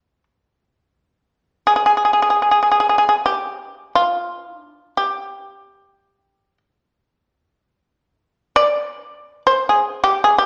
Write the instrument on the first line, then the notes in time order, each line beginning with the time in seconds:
shamisen
Already playing: D4
1.67 G#4
1.76 G#4
1.86 G#4
1.97 G#4
2.05 G#4
2.13 G#4
2.22 G#4
2.30 G#4
2.42 G#4
2.51 G#4
2.63 G#4
2.71 G#4
2.80 G#4
2.89 G#4
2.98 G#4
3.09 G#4
3.26 G4
3.95 F4
4.61 D4
4.97 G4
8.56 D5
9.47 C5
9.69 G#4
10.04 G4
10.24 G#4
10.38 G4